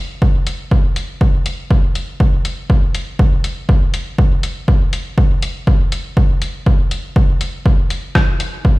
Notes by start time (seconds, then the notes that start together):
0.22 kick
0.47 closed hi-hat
0.71 kick
0.96 closed hi-hat
1.21 kick
1.46 closed hi-hat
1.71 kick
1.95 closed hi-hat
2.20 kick
2.45 closed hi-hat
2.70 kick
2.95 closed hi-hat
3.19 kick
3.44 closed hi-hat
3.69 kick
3.94 closed hi-hat
4.18 kick
4.43 closed hi-hat
4.68 kick
4.93 closed hi-hat
5.18 kick
5.42 closed hi-hat
5.67 kick
5.92 closed hi-hat
6.17 kick
6.42 closed hi-hat
6.66 kick
6.91 closed hi-hat
7.16 kick
7.41 closed hi-hat
7.66 kick
7.90 closed hi-hat
8.15 kick, cross-stick
8.40 closed hi-hat
8.65 kick